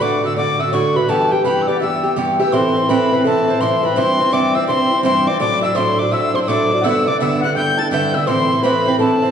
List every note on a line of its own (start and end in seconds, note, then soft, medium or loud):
0.00 0.24 A2 medium
0.00 0.24 D3 medium
0.00 0.24 A3 medium
0.00 0.22 F#4 medium
0.00 0.36 D5 medium
0.00 0.24 D6 loud
0.24 0.36 D3 soft
0.24 0.37 A3 soft
0.24 0.37 F#4 medium
0.24 0.36 E6 loud
0.36 0.60 A2 medium
0.36 0.60 D3 medium
0.36 0.59 A3 medium
0.36 0.58 F#4 medium
0.36 0.59 D5 medium
0.36 0.62 D6 loud
0.59 0.72 D3 soft
0.59 0.73 A3 medium
0.59 0.73 F#4 medium
0.59 0.73 E5 medium
0.59 0.75 E6 medium
0.72 0.96 A2 medium
0.72 0.96 D3 medium
0.72 0.95 A3 medium
0.72 0.94 F#4 medium
0.72 0.94 C#5 medium
0.72 0.98 C#6 loud
0.95 1.08 D3 soft
0.95 1.09 A3 soft
0.95 1.09 F#4 medium
0.95 1.10 B4 medium
0.95 1.11 B5 medium
1.08 1.32 G2 medium
1.08 1.32 E3 medium
1.08 1.32 B3 medium
1.08 1.30 G4 medium
1.08 1.33 A4 medium
1.08 1.33 A5 loud
1.31 1.44 E3 soft
1.31 1.45 B3 soft
1.31 1.44 G4 medium
1.31 1.45 G4 medium
1.31 1.44 G5 medium
1.44 1.68 G2 medium
1.44 1.68 E3 medium
1.44 1.68 B3 medium
1.44 1.67 G4 medium
1.44 1.68 B4 medium
1.44 1.63 B5 medium
1.62 1.69 E6 medium
1.67 1.80 E3 soft
1.67 1.81 B3 medium
1.67 1.81 G4 medium
1.67 1.76 D5 medium
1.67 1.80 D6 medium
1.76 1.81 F#5 medium
1.80 2.04 G2 medium
1.80 2.04 E3 medium
1.80 2.04 B3 medium
1.80 2.02 G4 medium
1.80 2.15 E5 medium
1.80 2.14 E6 loud
2.03 2.16 E3 soft
2.03 2.16 B3 medium
2.03 2.17 G4 medium
2.16 2.40 G2 medium
2.16 2.40 E3 medium
2.16 2.40 B3 medium
2.16 2.38 G4 medium
2.40 2.52 E3 medium
2.40 2.53 B3 soft
2.40 2.53 G4 medium
2.40 2.48 E5 medium
2.40 2.54 E6 medium
2.48 2.53 B4 medium
2.52 2.76 A2 medium
2.52 2.76 E3 medium
2.52 2.76 C4 medium
2.52 2.74 E4 medium
2.52 2.90 C5 medium
2.52 2.91 C6 loud
2.75 2.88 E3 soft
2.75 2.89 C4 medium
2.75 2.89 E4 medium
2.89 3.12 A2 medium
2.89 3.12 E3 medium
2.89 3.12 C4 medium
2.89 3.10 E4 loud
2.89 3.10 B4 medium
2.89 3.25 B5 medium
3.11 3.24 E3 soft
3.11 3.25 C4 medium
3.11 3.25 E4 medium
3.11 3.26 B4 medium
3.24 3.48 A2 medium
3.24 3.48 E3 medium
3.24 3.48 C4 medium
3.24 3.46 E4 medium
3.24 3.62 A4 medium
3.24 3.62 A5 loud
3.48 3.60 E3 soft
3.48 3.61 C4 medium
3.48 3.61 E4 medium
3.61 3.84 A2 medium
3.61 3.84 E3 medium
3.61 3.84 C4 medium
3.61 3.82 E4 medium
3.61 3.85 C5 medium
3.61 3.86 C6 loud
3.83 3.96 E3 medium
3.83 3.96 C4 medium
3.83 3.96 E4 medium
3.83 3.96 B4 medium
3.83 3.99 B5 medium
3.96 4.19 G2 medium
3.96 4.20 E3 medium
3.96 4.19 C4 medium
3.96 4.18 E4 medium
3.96 4.34 C5 medium
3.96 4.35 C6 loud
4.19 4.31 E3 soft
4.19 4.32 C4 medium
4.19 4.32 E4 medium
4.32 4.55 G2 medium
4.32 4.56 E3 medium
4.32 4.55 C4 medium
4.32 4.54 E4 medium
4.32 4.56 D5 medium
4.32 4.57 D6 loud
4.55 4.68 E3 medium
4.55 4.69 C4 medium
4.55 4.68 E4 medium
4.55 4.69 E5 medium
4.55 4.67 E6 loud
4.68 4.91 G2 medium
4.68 4.92 E3 medium
4.68 4.92 C4 medium
4.68 4.90 E4 medium
4.68 5.02 C5 medium
4.68 5.02 C6 loud
4.91 5.03 E3 soft
4.91 5.04 C4 medium
4.91 5.04 E4 medium
5.03 5.27 G2 medium
5.03 5.28 E3 loud
5.03 5.27 C4 loud
5.03 5.25 E4 loud
5.03 5.26 C5 medium
5.03 5.29 C6 loud
5.27 5.40 E3 soft
5.27 5.41 C4 medium
5.27 5.40 E4 medium
5.27 5.39 D5 medium
5.27 5.40 D6 loud
5.40 5.63 A2 medium
5.40 5.63 F#3 medium
5.40 5.62 D4 loud
5.40 5.60 E4 medium
5.40 5.64 D5 medium
5.40 5.62 D6 loud
5.61 5.75 F#3 soft
5.61 5.75 D4 medium
5.61 5.75 E4 medium
5.61 5.75 E5 medium
5.61 5.78 E6 loud
5.75 5.98 A2 medium
5.75 5.99 F#3 medium
5.75 5.99 D4 medium
5.75 5.98 E4 loud
5.75 6.09 C5 medium
5.75 6.00 C6 loud
5.99 6.11 F#3 soft
5.99 6.12 D4 medium
5.99 6.12 E4 medium
5.99 6.14 D6 loud
6.11 6.35 A2 medium
6.11 6.35 F#3 medium
6.11 6.35 D4 medium
6.11 6.34 E4 medium
6.11 6.36 E5 loud
6.11 6.37 E6 loud
6.34 6.47 F#3 soft
6.34 6.48 D4 medium
6.34 6.48 E4 medium
6.34 6.47 C5 medium
6.34 6.42 C6 medium
6.42 6.49 E6 medium
6.48 6.71 A2 medium
6.48 6.71 F#3 medium
6.48 6.71 D4 loud
6.48 6.70 E4 loud
6.48 6.78 D5 medium
6.48 6.85 D6 loud
6.71 6.84 F#3 soft
6.71 6.84 D4 soft
6.71 6.84 E4 medium
6.81 7.07 G2 medium
6.81 7.07 D3 medium
6.81 7.06 B3 loud
6.81 7.05 E5 medium
6.81 6.84 F#5 medium
6.81 7.09 E6 loud
6.86 7.05 E4 medium
7.06 7.20 D3 soft
7.06 7.20 B3 soft
7.06 7.19 E4 medium
7.06 7.20 D5 medium
7.06 7.20 D6 loud
7.19 7.43 G2 medium
7.19 7.43 D3 medium
7.19 7.43 B3 medium
7.19 7.42 E4 medium
7.19 7.43 E5 medium
7.19 7.41 E6 loud
7.41 7.56 B3 medium
7.41 7.56 E4 medium
7.41 7.55 F#5 medium
7.41 7.55 F#6 loud
7.46 7.55 D3 soft
7.55 7.78 G2 medium
7.55 7.79 D3 medium
7.55 7.79 B3 medium
7.55 7.77 E4 medium
7.55 7.77 G5 loud
7.55 7.80 G6 loud
7.78 7.91 D3 soft
7.78 7.92 B3 medium
7.78 7.91 E4 medium
7.78 7.91 A5 medium
7.78 7.90 A6 loud
7.91 8.14 G2 medium
7.91 8.15 D3 medium
7.91 8.14 B3 medium
7.91 8.13 E4 loud
7.91 8.12 G5 medium
7.91 8.16 G6 loud
8.14 8.27 D3 soft
8.14 8.28 B3 medium
8.14 8.27 E4 medium
8.14 8.27 E5 medium
8.14 8.29 E6 loud
8.27 8.50 A2 medium
8.27 8.50 E3 medium
8.27 8.50 C4 medium
8.27 8.49 E4 medium
8.27 8.64 C5 medium
8.27 8.65 C6 loud
8.50 8.63 E3 soft
8.50 8.64 C4 soft
8.50 8.63 E4 medium
8.63 8.86 A2 medium
8.63 8.87 E3 medium
8.63 8.86 C4 medium
8.63 8.84 E4 medium
8.63 9.00 B4 medium
8.63 8.99 B5 loud
8.86 8.99 E3 soft
8.86 8.99 C4 medium
8.86 8.99 E4 medium
8.99 9.22 A2 medium
8.99 9.22 E3 medium
8.99 9.22 C4 medium
8.99 9.21 E4 medium
8.99 9.31 A4 medium
8.99 9.31 A5 loud
9.22 9.31 E3 medium
9.22 9.31 C4 medium
9.22 9.31 E4 medium